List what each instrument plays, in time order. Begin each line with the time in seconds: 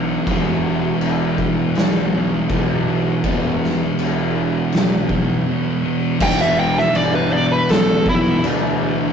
Already playing: fingered electric bass B1, distorted electric guitar E2 B2 E3, tonewheel organ E3 B3 F#4
0.25 fingered electric bass E1, distorted electric guitar E2 B2 E3, kick, crash
1.01 fingered electric bass E1, crash
1.38 kick
1.75 fingered electric bass B1, snare, crash
2.12 distorted electric guitar E2 B2 E3
2.49 fingered electric bass B1, distorted electric guitar E2 B2 E3, kick, crash
2.87 distorted electric guitar E2 B2 E3
3.24 fingered electric bass E1, distorted electric guitar E2 B2 E3, kick, crash
3.64 snare
3.98 fingered electric bass E1, crash
4.72 fingered electric bass B1, snare, crash
5.09 distorted electric guitar E2 B2 E3, kick
5.46 distorted electric guitar E2 B2 E3
5.84 distorted electric guitar E2 B2 E3
6.19 fingered electric bass E1, distorted electric guitar E2 B2 E3, tonewheel organ E3 B3 F#4, lead electric guitar G5, kick, crash
6.41 lead electric guitar E5
6.60 lead electric guitar G5
6.79 lead electric guitar E5, snare
6.94 fingered electric bass G1, lead electric guitar D5, crash
7.15 lead electric guitar B4
7.30 distorted electric guitar E2 B2 E3, lead electric guitar D5
7.52 lead electric guitar B4
7.69 fingered electric bass B1, lead electric guitar A4, snare, crash
8.06 lead electric guitar E4, kick
8.43 fingered electric bass D2, distorted electric guitar E2 B2 E3, crash